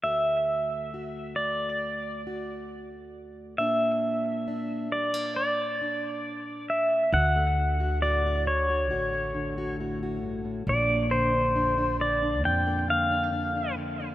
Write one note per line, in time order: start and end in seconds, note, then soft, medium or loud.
0.03 3.58 D2 medium
0.03 1.36 A3 soft
0.03 0.93 F#4 soft
0.03 1.36 E5 medium
0.94 2.26 F#4 soft
1.36 3.54 A3 soft
1.36 2.21 D5 medium
2.27 3.54 F#4 soft
3.58 7.08 A#2 medium
3.58 4.92 A#3 soft
3.58 4.46 D4 medium
3.58 4.92 E5 medium
4.48 5.80 D4 soft
4.92 5.14 G3 soft
4.92 5.33 D5 medium
5.14 7.13 A#3 soft
5.36 6.65 D5 medium
5.82 7.13 D4 soft
6.70 7.10 E5 medium
7.13 8.90 D2 medium
7.13 8.89 D2 medium
7.13 7.79 F#4 medium
7.13 7.98 F#5 medium
7.36 9.12 A3 soft
7.58 8.46 D3 soft
7.80 8.01 F#4 medium
8.02 8.46 A2 soft
8.02 8.24 F#4 medium
8.02 8.47 D5 medium
8.26 8.69 F#4 soft
8.47 9.33 D3 soft
8.47 9.75 C#5 medium
8.70 8.90 F#4 soft
8.90 10.63 A1 medium
8.90 10.23 D2 medium
8.90 9.57 F#4 medium
9.13 10.62 A3 soft
9.34 11.10 D3 soft
9.58 9.79 F#4 medium
9.80 10.44 A2 soft
9.80 10.02 F#4 soft
10.03 10.63 F#4 soft
10.23 10.45 G2 soft
10.45 10.66 A2 soft
10.67 12.44 A#1 medium
10.67 11.11 A#2 medium
10.67 11.34 D4 medium
10.67 11.10 D5 medium
10.90 12.65 A#3 soft
11.11 11.98 D3 soft
11.11 11.96 C5 medium
11.34 11.55 D4 soft
11.55 12.44 F2 medium
11.55 11.77 D4 medium
11.78 12.22 D4 medium
11.99 12.87 D3 soft
11.99 12.42 D5 medium
12.23 12.44 D4 soft
12.44 14.15 F2 medium
12.44 12.88 A#2 medium
12.44 13.10 D4 soft
12.44 12.90 G5 medium
12.67 14.15 A#3 soft
12.88 13.75 D3 soft
12.88 13.74 F5 medium
13.11 13.31 D4 medium
13.32 14.15 F2 soft
13.32 13.54 D4 soft
13.55 13.99 D4 medium
13.76 14.15 D3 soft
14.00 14.15 D4 medium